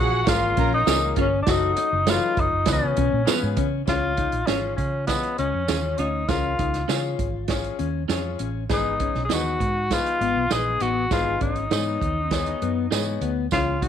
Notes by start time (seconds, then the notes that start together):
Already playing: A#1 F4 G#4 F#5
0.00 F#4
0.26 G#1 A#3 C#4 F4 G#4 A#4 F5, kick, snare, closed hi-hat, tambourine
0.57 A#1 C#4 A#4 A#5, kick, closed hi-hat
0.74 D#4
0.86 C#2 A#3 C#4 F4 G#4 A#4 C#5, snare, closed hi-hat, tambourine
1.16 G1 C#4 F4 G#4 C#5, kick, closed hi-hat
1.21 C#4
1.43 D4
1.47 F#1 A3 C#4 D#4 F#4 A4, kick, snare, closed hi-hat, tambourine
1.51 D#4
1.77 D#4, closed hi-hat
1.93 F#1
2.06 F#3 A3 C#4 D#4 F4 F#4 B4 C#5, snare, closed hi-hat, tambourine
2.11 F4
2.37 F#1 D#4, kick, closed hi-hat
2.53 F#1
2.66 C#2 C#3 B3 C#4 F4 G#4 B4, kick, snare, closed hi-hat, tambourine
2.73 C#4
2.83 C#3
2.97 B2 C#4, kick, closed hi-hat
3.13 A#2
3.25 B3 C#4 F4 G#4 B4 C#5, muted fingered electric bass stroke, snare, closed hi-hat, tambourine
3.43 G#2
3.57 C#3 C#4, kick, closed hi-hat
3.86 C#2 C#3 C#4 F4 G#4 C#5, kick, snare, closed hi-hat, tambourine
4.17 D#4, kick, closed hi-hat
4.32 A#1, closed hi-hat
4.47 G#1 C#4 F4 G#4 C#5, snare, closed hi-hat, tambourine
4.77 C#3 C#4, kick, closed hi-hat
5.07 B3 C#4 F4 G#4 D#5, kick, snare, closed hi-hat, tambourine
5.23 closed hi-hat
5.38 C#2 C#4, closed hi-hat
5.54 F2
5.68 D#2 C#4 F4 G#4 C#5, snare, closed hi-hat, tambourine
5.98 D2 C#4 D#4 F4 G#4 C#5, closed hi-hat
6.28 C#2 C#3 C#4 F4 G#4 A#4, kick, snare, closed hi-hat, tambourine
6.59 C#2 D#4, kick, closed hi-hat
6.74 snare, closed hi-hat
6.88 C#3 C#4 F4 G#4 C#5, snare, closed hi-hat, tambourine
7.19 G#1, kick, closed hi-hat
7.48 C#4 F4 G#4 C#5, kick, snare, closed hi-hat, tambourine
7.64 closed hi-hat
7.79 D#2 C#4, closed hi-hat
8.08 F2 C#4 F4 G#4 C#5, snare, closed hi-hat, tambourine
8.39 A1 C#4, closed hi-hat
8.69 G#1 G#2 B3 D#4 G#4 B4, kick, snare, closed hi-hat, tambourine
9.00 C#4, kick, closed hi-hat
9.15 B1, snare
9.25 G#4
9.29 D#2 B3 D#4 G#4 B4 D#5, snare, closed hi-hat, tambourine
9.33 F#4
9.60 G#2, kick, closed hi-hat
9.90 B3 D#4 F4 G#4 B4, kick, snare, closed hi-hat, tambourine
10.06 closed hi-hat
10.21 G#1 B3, closed hi-hat
10.36 B1
10.50 A#1 B3 D#4 G#4 B4 D#5, snare, closed hi-hat, tambourine
10.80 A1 B3 D#4 F#4 G#4 B4 D#5, closed hi-hat
11.11 G#1 G#2 B3 D#4 F4 G#4 B4, kick, snare, closed hi-hat, tambourine
11.41 G#1 C#4 D#4, kick, closed hi-hat
11.56 closed hi-hat
11.71 G#2 B3 D#4 G#4 B4 C#5 D#5, snare, closed hi-hat, tambourine
12.02 D#2, kick, closed hi-hat
12.30 B3 D#4 G#4 C#5, kick, snare, closed hi-hat, tambourine
12.46 closed hi-hat
12.62 F#2 B3, closed hi-hat
12.91 G#2 B3 D#4 G#4 B4 C#5 D#5, snare, closed hi-hat, tambourine
13.21 D2 B3, closed hi-hat
13.51 C#2 C#3 C#4 F4 G#4 C#5, kick, snare, closed hi-hat, tambourine
13.82 D#4 F#4, kick, closed hi-hat